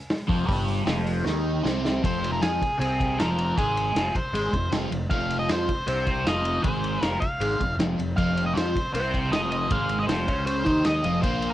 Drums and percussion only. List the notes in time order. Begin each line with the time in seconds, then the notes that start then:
0.10 snare, open hi-hat
0.29 kick, open hi-hat
0.49 kick, open hi-hat
0.68 open hi-hat
0.87 snare, open hi-hat
1.07 open hi-hat
1.26 snare
1.65 snare
1.85 snare
2.04 kick, ride
2.24 ride
2.42 snare, ride
2.62 kick, ride
2.81 ride
3.00 kick, ride
3.20 snare, ride
3.38 ride
3.58 kick, ride
3.77 ride
3.96 snare, ride
4.15 kick, ride
4.35 ride
4.53 kick, ride
4.72 snare, ride
4.92 ride
5.11 kick, ride
5.30 ride
5.49 snare, ride
5.69 kick, ride
5.87 ride
6.07 kick, ride
6.27 snare, ride
6.45 ride
6.64 kick, ride
6.84 ride
7.02 snare, ride
7.22 kick, ride
7.41 ride
7.60 kick, ride
7.80 snare, ride
7.99 ride
8.18 kick, ride
8.37 ride
8.57 snare, ride
8.76 kick, ride
8.95 ride
9.14 kick, ride
9.33 snare, ride
9.52 ride
9.71 kick, ride
9.89 ride
10.09 snare, ride
10.28 kick, ride
10.47 ride
10.66 kick, ride
10.85 snare, ride
11.04 ride
11.23 kick, ride
11.42 ride